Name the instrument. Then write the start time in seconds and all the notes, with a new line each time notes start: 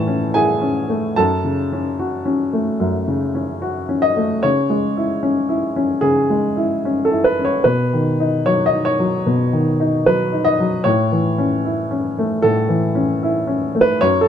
upright piano
Already playing: A2 E3 A3 C#4 E4 A4 A5
0.07 C#4
0.34 E4 G#4 G#5
0.61 C#4
0.89 A3
1.16 F#2 A4 A5
1.44 C#3
1.73 C#4
1.99 F#4
2.25 C#4
2.53 A3
2.80 F#2
3.08 C#3
3.35 C#4
3.62 F#4
3.89 C#4
4.02 D#5
4.17 A3
4.43 C#3 C#5
4.70 G#3
4.97 E4
5.23 C#4
5.49 E4
5.76 C#4
6.01 C#3 G#4
6.30 G#3
6.57 E4
6.85 C#4
7.05 A4
7.11 E4
7.24 B4
7.39 C#4
7.45 C#5
7.64 B2 B4
7.93 D#3
8.20 D#4
8.46 F#3 C#5
8.66 D#5
8.73 D#4
8.85 C#5
8.99 F#3
9.26 B2
9.53 D#3
9.80 D#4
10.06 F#3 B4
10.32 D#4
10.45 D#5
10.60 F#3
10.84 A2 C#5
11.12 E3
11.38 C#4
11.64 E4
11.91 C#4
12.19 A3
12.42 A2 A4
12.69 E3
12.95 C#4
13.23 E4
13.47 C#4
13.75 A3
13.81 B4
14.01 F#2 C#5
14.21 A4